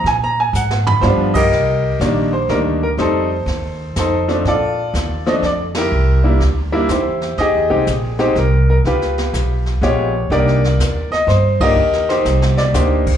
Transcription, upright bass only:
X:1
M:3/4
L:1/8
Q:"Swing" 1/4=123
K:Gphr
V:1 name="Upright bass" clef=bass
B,,2 A,,2 G,,2 | [K:Cm] C,,2 B,,,2 D,,2 | F,,2 E,,2 F,,2 | B,,2 E,,2 F,,2 |
C,,2 D,,2 =E,,2 | (3F,, E,, C,, B,,,2 C,,2 | _D,,2 _C,,2 B,,,2 | C,,2 E,, z G,,2 |
E,,2 C,,2 D,, z |]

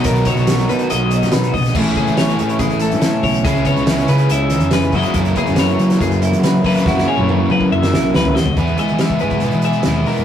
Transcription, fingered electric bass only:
X:1
M:4/4
L:1/16
Q:1/4=141
K:F#mix
V:1 name="Fingered electric bass" clef=bass
B,,,2 z B,,,3 B,,2 B,,,3 B,,3 A,,,2 | =A,,,2 z A,,,3 =A,,2 A,,,3 A,,3 B,,,2 | C,,2 z C,,3 C,2 C,,3 ^E,,3 F,, z | F,,2 z F,,3 F,2 F,,3 F,3 F,2 |
F,,2 z F,,3 F,2 F,,2 B,,,2 C,,2 D,,2 | E,,2 z E,3 G,,3 E,2 z D,,2 z G,, |]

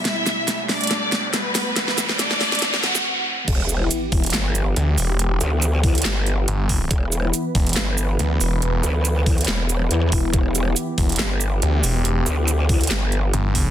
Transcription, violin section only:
X:1
M:4/4
L:1/8
Q:"Swing 16ths" 1/4=140
K:Em
V:1 name="Violin section"
[Ee]3 [Dd]3 [B,B]2- | [B,B]2 [Dd]3 [Ff] z2 | z8 | z8 |
z8 | z8 | z8 | z8 |]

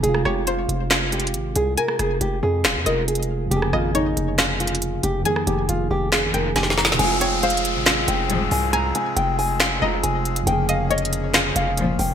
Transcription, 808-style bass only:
X:1
M:4/4
L:1/16
Q:1/4=138
K:Fm
V:1 name="808-style bass" clef=bass
F,,,2 F,,,4 F,,,6 A,,,2 C,,2 | z2 F,,,2 F,,,2 F,,2 E,,, F,, F,,,6 | F,,,2 A,,,4 F,,,8 F,,,2 | z2 F,,,2 F,,,2 F,,,3 A,,, F,,,2 F,,,3 E,,, |
F,,,6- F,,, A,,,3 F,,,4 C,,2- | C,,2 z2 F,,,6 F,,,2 F,,,4 | F,,,8- F,,,2 F,,,4 F,,,2 |]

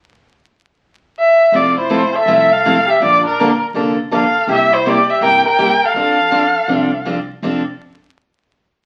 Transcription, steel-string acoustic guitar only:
X:1
M:4/4
L:1/16
Q:"Swing" 1/4=163
K:F
V:1 name="Steel-string acoustic guitar"
z16 | [F,A,CEA]2 z2 [F,A,CEA] z3 [F,A,CEA]2 z2 [F,A,CEA] z3 | [D,F,B,DA]2 z2 [D,F,B,DA] z3 [D,F,B,DA]2 z2 [D,F,B,DA] z3 | [C,G,B,EG]2 z2 [C,G,B,EG] z3 [C,G,B,EG]2 z2 [C,G,B,EG] z3 |
[F,CDA]2 z2 [F,CDA] z3 [F,CDA]2 z2 [F,CDA] z3 | [F,CDA]2 z12 z2 |]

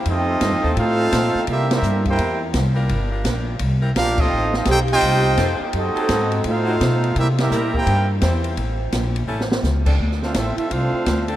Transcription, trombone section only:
X:1
M:4/4
L:1/8
Q:"Swing" 1/4=169
K:Flyd
V:1 name="Trombone section"
[A,C_E]4 [A,CF]4 | [G,_B,E] [G,B,E]2 [B,EG]2 z3 | z6 F [A,C_E]- | [A,C_E] [A,CE] G [CEG]4 z |
[C^DA]4 [A,DF]4 | [G,_B,E] [G,B,E]2 [B,EG]2 z3 | z8 | z [A,CF] E E [A,CF]3 z |]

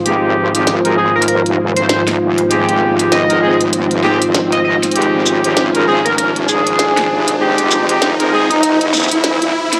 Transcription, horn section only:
X:1
M:4/4
L:1/16
Q:"Swing 16ths" 1/4=98
K:Fm
V:1 name="Horn section"
[A,CEG]3 [A,CEG] z [A,CEB] [A,CEA] z8 z | [A,CEG]3 [A,CEG] z [A,CEB] [A,CEA] z3 [A,CEG] z4 z | [A,CEG]3 [A,CEG] z [A,CEB] [A,CEA] z8 z | [A,CEG]3 [A,CEG] z [A,CEB] [A,CEA] z8 z |]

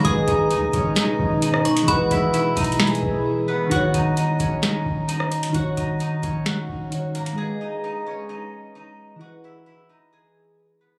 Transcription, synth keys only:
X:1
M:4/4
L:1/8
Q:1/4=131
K:Ebphr
V:1 name="Synth keys"
[A,Ace]8 | [=E,=E^G=B]8 | [E,EGd]8 | [E,EGd]6 [E,EGd]2 |
[A,Ace]8 | [=E,=E^G=B]8 |]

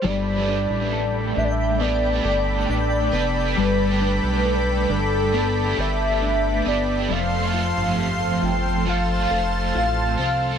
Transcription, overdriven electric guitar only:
X:1
M:4/4
L:1/8
Q:1/4=68
K:Gmix
V:1 name="Overdriven electric guitar"
[G,A,DGB]4 [A,DGB]3 [DGB] | [G,A,DGB]4 [A,DGB]3 [DGB] | [F,A,CFA]4 [A,CFA]3 [CFA] |]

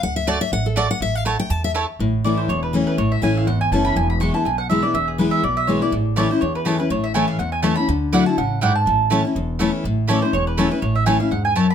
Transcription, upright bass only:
X:1
M:4/4
L:1/8
Q:"Swing" 1/4=245
K:A
V:1 name="Upright bass" clef=bass
D,,4 A,,,4 | A,,,4 E,,4 | A,,,4 E,,,4 | A,,,2 A,,,2 G,,,2 F,,,2 |
E,,,4 B,,,4 | E,,,4 B,,,4 | A,,,4 E,,4 | A,,,4 E,,4 |
D,,4 A,,,4 | A,,,4 E,,,4 | A,,,4 E,,,4 | A,,,4 E,,,4 |]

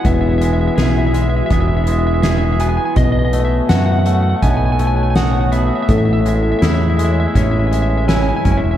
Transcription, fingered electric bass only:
X:1
M:4/4
L:1/16
Q:1/4=82
K:E
V:1 name="Fingered electric bass" clef=bass
E,,,4 B,,,4 E,,,8 | B,,,4 F,,4 B,,,8 | A,,,4 E,,4 A,,,6 F,,, E,,, |]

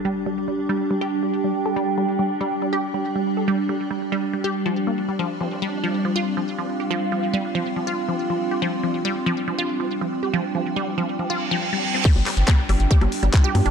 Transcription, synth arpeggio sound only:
X:1
M:4/4
L:1/16
Q:1/4=140
K:Fmix
V:1 name="Synth arpeggio sound" clef=bass
G, z G, z G, z G, z G, G z G, z G, z A | G, z G, z G, z G, z G, G z G, z G, z A | G, z G, z G, z G, z G, G z F, z B, z G, | F, z F, z G, z F, z F, F z F, z F, z G |
F, z F, z G, z F, z F, F z F, z F, z G | F, z F, z G, z F, z F, F z F, z F, z G | F, z F, z G, z F, z F, F z F, z G, z C | G, z G, z G, z G, z G G, z G, z G z D |]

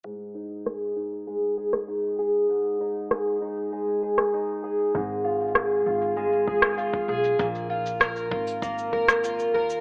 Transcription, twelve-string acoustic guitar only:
X:1
M:4/4
L:1/8
Q:1/4=98
K:A#phr
V:1 name="Twelve-string acoustic guitar"
G,, D G D G, G D G | G,, D G D G, G D G | G,, E G E G, G E G | A,, E A E A, A E A |]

